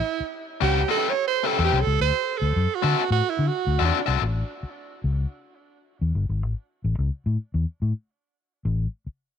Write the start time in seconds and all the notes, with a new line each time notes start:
Already playing: E4
0.20 muted fingered electric bass stroke
0.61 C#2 C#4 G4 B4 F#5
0.88 C#4 G4 A4 B4 E5
1.09 C#5
1.28 C5
1.44 C#4 G4 A4 B4 E5
1.58 E2 C#4 G4 B4 E5
1.64 G4
1.73 C2
1.82 A4
1.87 C#2
2.00 D2 C5
2.37 A4
2.42 D2
2.56 F#2
2.75 F#4
2.82 D3 C4 F#4 A4 E5
3.10 A2 F#4
3.30 E4
3.39 D3
3.48 F#4
3.67 D2
3.79 E2 C4 F#4 A4 E5
3.85 D4
4.06 C2 C4 F#4 A4 E5
4.22 A1
4.63 muted fingered electric bass stroke
5.04 C#2
6.01 E2
6.15 G1
6.29 G#1
6.43 A1
6.84 A1
6.98 C#2
7.26 A2
7.54 E2
7.82 A2
8.65 A1
9.06 muted fingered electric bass stroke